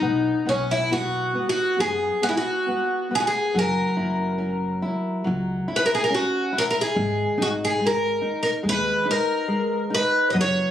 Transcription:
Already playing: D#4
0.01 B1 B3
0.46 B1 B3 C#4
0.71 E4
0.91 B3 F#4
1.35 B3
1.49 F#4
1.78 F#2 B3 G#4
2.23 B3 F#4
2.29 E4
2.37 F#4
2.68 B3
3.11 B3
3.15 G#4
3.20 F#4
3.27 G#4
3.54 F#1 F#3
3.59 A#4
3.97 F#1 E4
4.38 C#4
4.82 E4
5.24 C#2 F#3
5.68 E4
5.76 B4
5.86 A#4
5.95 G#4
6.04 A#4
6.10 C#4
6.14 F#4
6.53 E4
6.58 A#4
6.71 A#4
6.81 G#4
6.96 G#1 G#3
7.38 G#1 D#4
7.42 F#4
7.65 G#4
7.79 G#3
7.87 A#4
8.22 D#4
8.43 A#4
8.63 D#2 G#3
8.69 B4
9.05 D#4
9.11 A#4
9.48 G#3
9.90 D#4
9.95 B4
10.30 F#3 D#5
10.35 F#1
10.41 C#5

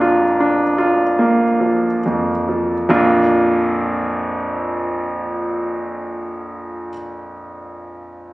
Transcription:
Already playing: A#1 F2 F3 A#3 D4 A#4 A#5
0.01 F4
0.40 D4
0.78 F4
1.19 A#3
1.60 F3
2.06 F2
2.49 F3
2.89 A#1 F2 F3 A#3 D4 F4

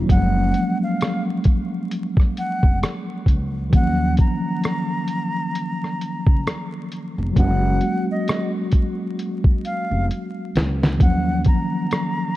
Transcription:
Already playing: D#3 F#3 A#3 C#4 D#4 F4
0.06 F#1 F#3 G#3 A#3, kick, closed hi-hat
0.11 F3 C#4 F#5
0.54 closed hi-hat
0.83 F5
1.01 cross-stick, closed hi-hat
1.44 kick, closed hi-hat
1.91 closed hi-hat
2.17 kick, cross-stick
2.37 F#5, closed hi-hat
2.63 F1, kick
2.83 cross-stick, closed hi-hat
3.26 C#2, kick, closed hi-hat
3.70 D#2 D#3 F#3 A#3, kick, closed hi-hat
3.75 F3 C#4 F#5
4.17 A#5, kick, closed hi-hat
4.64 cross-stick, closed hi-hat
5.08 closed hi-hat
5.55 closed hi-hat
5.84 cross-stick
6.01 closed hi-hat
6.26 C#2, kick
6.47 cross-stick, closed hi-hat
6.92 closed hi-hat
7.18 F1
7.33 F#1 F#3 G#3 A#3, kick, closed hi-hat
7.38 C#4 F#4 F#5
7.81 closed hi-hat
8.11 D#5
8.28 cross-stick, closed hi-hat
8.72 kick, closed hi-hat
9.19 closed hi-hat
9.44 kick
9.65 F5, closed hi-hat
9.91 F1
10.11 closed hi-hat
10.56 C#2, snare, closed hi-hat
10.83 snare
10.97 D#2 D#3 F#3 A#3, kick, closed hi-hat
11.02 F3 C#4 F#5
11.44 A#5, kick, closed hi-hat
11.91 cross-stick, closed hi-hat

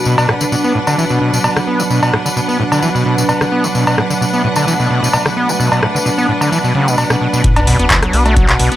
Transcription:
Already playing: B2 F#3 D4 B4 F#5
0.05 B2 D4, tambourine
0.18 B2, tambourine, cowbell
0.29 A2, cross-stick
0.41 D3, tambourine
0.52 B2, tambourine
0.64 B3, tambourine
0.75 A2
0.87 D3, tambourine, cowbell
0.98 E3, tambourine
1.09 B2, tambourine
1.21 B2
1.33 B2, tambourine
1.44 B2, tambourine, cowbell
1.56 D3, cross-stick, tambourine
1.67 B3
1.80 B2, tambourine
1.90 B2, tambourine
2.03 B2, tambourine, cowbell
2.13 A2, cross-stick
2.26 D3, tambourine
2.36 B2, tambourine
2.49 B3, tambourine
2.60 A2
2.72 D3, tambourine, cowbell
2.82 E3, tambourine
2.95 B2, tambourine
3.06 B2
3.18 B2, tambourine
3.29 B2, tambourine, cowbell
3.41 D3, cross-stick, tambourine
3.52 B3
3.64 B2, tambourine
3.75 B2 A3, tambourine
3.87 B2, tambourine, cowbell
3.98 A2, cross-stick
4.10 D3, tambourine
4.21 B2, tambourine
4.33 B3, tambourine
4.44 A2
4.56 D3, tambourine, cowbell
4.67 E3, tambourine
4.79 B2, tambourine
4.91 B2
5.03 B2, tambourine
5.13 B2, tambourine, cowbell
5.26 D3, cross-stick, tambourine
5.37 B3
5.49 B2, tambourine
5.60 B2, tambourine
5.72 B2, tambourine, cowbell
5.83 A2, cross-stick
5.95 D3, tambourine
6.06 B2, tambourine
6.18 B3, tambourine
6.29 A2
6.41 D3, tambourine, cowbell
6.52 E3, tambourine
6.64 B2, tambourine
6.75 C#3
6.87 B2, tambourine
6.98 B2, tambourine, cowbell
7.10 B2, cross-stick, tambourine
7.21 B2
7.33 B2, tambourine
7.44 B3 F#4 D5, kick, closed hi-hat, sub drop
7.56 B1 D4, closed hi-hat, cowbell
7.67 B2, open hi-hat
7.79 F#1 B3, closed hi-hat
7.90 E3, kick, clap, closed hi-hat
8.03 F#3, cross-stick, closed hi-hat
8.13 B1 B3, open hi-hat
8.26 A3, closed hi-hat, cowbell
8.37 F#3, kick, closed hi-hat
8.49 B2, clap, closed hi-hat
8.60 B1 B2, open hi-hat
8.72 B3, closed hi-hat

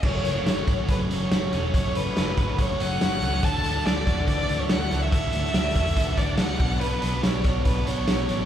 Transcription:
Already playing: C#4
0.02 F#1 F#2 C#3 F#3 A3 A4 C#5 F#5 C#6, kick, crash
0.07 C#4
0.24 F#1 A3, snare, closed hi-hat
0.36 F#3 A3 C#4
0.46 F#1 C#4 C#5, snare, closed hi-hat
0.67 G#1 F#2 C#3 F#3 A3 C#4 F#4, kick, closed hi-hat
0.88 F#1 F#3 B4, kick, closed hi-hat
1.09 F#1 C#3 F#3 A3 C#4 C#5, closed hi-hat
1.31 F#1 F#4, snare, closed hi-hat
1.52 E1 C#3 F#3 A3 C#4, closed hi-hat
1.73 F#1 F#2 C#3 F#3 A3 C#4 C#5, kick, closed hi-hat
1.95 F#1 A3 B4, closed hi-hat
2.05 F#3 A3 C#4
2.17 F#1 C#4, snare, closed hi-hat
2.37 G#1 F#2 C#3 F#3 A3 C#4 F#4, kick, closed hi-hat
2.58 F#1 F#3 C#5, kick, closed hi-hat
2.79 F#1 C#3 F#3 A3 C#4 F#5, closed hi-hat
3.01 F#1 F#4, snare, closed hi-hat
3.22 C#2 C#3 F#3 A3 C#4, closed hi-hat
3.42 D2 D3 E3 A3 D4 F#4 E5 A5, kick, closed hi-hat
3.64 D2 A3, closed hi-hat
3.74 A3 D4 F#4
3.85 D2 D4 D5, snare, closed hi-hat
4.05 E2 D3 E3 A3 D4 F#4, kick, closed hi-hat
4.27 D2 E3 D5, kick, closed hi-hat
4.48 D2 E3 A3 D4 F#4, closed hi-hat
4.60 C#5
4.69 D2 F#4 F#5, snare, closed hi-hat
4.90 C#2 E3 A3 D4 F#4, closed hi-hat
5.02 E5
5.11 D2 D3 E3 A3 D4 F#4 E5, kick, closed hi-hat
5.33 D2 A3, closed hi-hat
5.43 A3 D4 F#4
5.54 D2 D4, snare, closed hi-hat
5.75 E2 D3 E3 A3 D4 F#4, kick, closed hi-hat
5.96 D2 E3, kick, closed hi-hat
6.17 D2 E3 A3 D4 F#4 D5, kick, closed hi-hat
6.38 D2 F#4 F#5, snare, closed hi-hat
6.59 B1 B2 F#3 B3 D4 B4, kick, open hi-hat
6.80 B2 F#3 B3 B4, closed hi-hat
6.84 D4
7.02 B1 B3, closed hi-hat
7.13 F#3 B3 D4
7.23 B1 D4 C#5, snare, closed hi-hat
7.44 B1 B2 F#3 B3 D4 F#4, kick, closed hi-hat
7.65 B1 F#3 B4, kick, closed hi-hat
7.86 B1 B2 F#3 B3 D4 C#5, closed hi-hat
8.08 B1 F#4, snare, closed hi-hat
8.29 A1 B2 F#3 B3 D4 E5, closed hi-hat

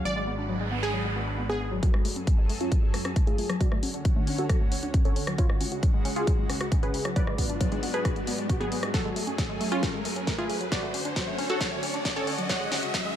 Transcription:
Already playing: F#4
0.05 G#1 F#3 G#3 D4 B4 D5, noise sweep
0.16 G#3
0.27 B3
0.38 D4
0.49 F#3
0.61 G#3
0.72 B3
0.83 D4 G#4
0.94 F#3
1.05 G#3
1.16 B3
1.27 D4
1.38 B3
1.49 B3 G#4
1.60 B3
1.72 F#3
1.83 F#2 F#3 F#4 G#4 A4, kick, closed hi-hat, riser
1.94 G#3, cross-stick
2.05 A3, open hi-hat
2.16 C#4, closed hi-hat
2.27 F#3, kick, closed hi-hat
2.38 G#3
2.49 A3, open hi-hat
2.61 C#4 F4, closed hi-hat
2.72 F#3, kick, closed hi-hat
2.83 G#3
2.94 A3, cross-stick, open hi-hat
3.05 C#4, cross-stick, closed hi-hat
3.16 A3, kick, closed hi-hat
3.27 A3 F4 G#4, closed hi-hat
3.38 A3, open hi-hat
3.50 F#3, cross-stick, closed hi-hat
3.61 D2 D3 F#3 C#4 F#4 D5, kick, closed hi-hat
3.72 A3, cross-stick
3.83 C#4, open hi-hat
3.94 D4, closed hi-hat
4.05 F#3, kick, closed hi-hat
4.16 A3
4.27 C#4, open hi-hat
4.38 D4 F#4 A4, closed hi-hat
4.49 F#3, kick, cross-stick, closed hi-hat
4.61 A3
4.72 C#4, open hi-hat
4.83 D4, closed hi-hat
4.94 C#4, kick, closed hi-hat
5.05 C#4 A4 C#5, closed hi-hat
5.16 C#4, open hi-hat
5.27 F#3, cross-stick, closed hi-hat
5.38 C#2 C#3 F#3 G#3 F4 F#4 C#5, kick, closed hi-hat
5.50 G#3, cross-stick
5.61 C#4, open hi-hat
5.72 F#4, closed hi-hat
5.83 F#3, kick, closed hi-hat
5.94 G#3
6.05 C#4, open hi-hat
6.16 F4 F#4 G#4, closed hi-hat
6.27 F#3, kick, closed hi-hat
6.38 G#3
6.50 C#4, cross-stick, open hi-hat
6.61 F#4, cross-stick, closed hi-hat
6.72 C#4, kick, closed hi-hat
6.83 C#4 G#4 B4, closed hi-hat
6.94 C#4, open hi-hat
7.05 F#3, cross-stick, closed hi-hat
7.16 G#2 F#3 B3 D4 B4 D5, kick, closed hi-hat
7.27 G#3, cross-stick
7.38 B3, kick, open hi-hat
7.50 D4, closed hi-hat
7.61 F#3, kick, closed hi-hat
7.72 G#3, closed hi-hat
7.83 B3, open hi-hat
7.94 D4 G#4 B4, closed hi-hat
8.05 F#3, kick, cross-stick, closed hi-hat
8.16 G#3, closed hi-hat
8.27 B3, open hi-hat
8.38 G#3, closed hi-hat
8.49 F#4, kick, closed hi-hat
8.60 F#3 B3 G#4, closed hi-hat
8.72 B3, open hi-hat
8.83 G#3, cross-stick, closed hi-hat
8.94 F#2 F#3 A3 F#4 G#4 A4, kick, snare, closed hi-hat
9.05 G#3
9.16 A3, open hi-hat
9.27 C#4, closed hi-hat
9.38 F#3, kick, snare, closed hi-hat
9.49 G#3
9.61 A3, open hi-hat
9.72 C#4 F4, closed hi-hat
9.83 F#3, kick, snare, closed hi-hat
9.94 G#3
10.05 A3, open hi-hat
10.16 C#4, closed hi-hat
10.27 A3, kick, snare, closed hi-hat
10.38 A3 F4 G#4, closed hi-hat
10.50 A3, open hi-hat
10.61 F#3, closed hi-hat
10.72 D2 D3 F#3 C#4 F#4 D5, kick, snare, closed hi-hat
10.83 A3
10.94 C#4, open hi-hat
11.05 D4, closed hi-hat
11.16 F#3, kick, snare, closed hi-hat
11.27 A3
11.38 C#4, open hi-hat
11.50 D4 F#4 A4, closed hi-hat
11.61 F#3, kick, snare, closed hi-hat
11.72 A3
11.83 C#4, open hi-hat
11.94 D4, closed hi-hat
12.05 C#4, kick, snare, closed hi-hat
12.16 C#4 A4 C#5, closed hi-hat
12.27 C#4, open hi-hat
12.38 F#3, closed hi-hat
12.49 C#2 C#3 F#3 G#3 C#5 F#5, kick, snare, closed hi-hat
12.61 G#3
12.72 C#4, snare, open hi-hat
12.83 F#4, closed hi-hat
12.94 F#3, kick, snare, closed hi-hat
13.05 G#3

